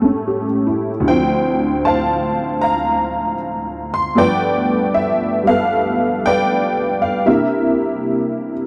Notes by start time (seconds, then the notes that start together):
Already playing: A2 G3 A#3 C#4 A4
0.02 A3 C#4
0.28 G4
0.67 E4
1.00 D2 D3
1.07 F3 C5 G5
1.11 C4
1.85 C5 F5 A5
2.61 F5 A#5
3.94 C6
4.15 G2 F3 A3 B3 B4 D5 G5
4.94 E5
5.44 G3 B3 F5
5.49 A4 B4
6.26 B4 D5 G5
7.02 F5
7.26 C3 A#3 D4 E4 G4 A#4 E5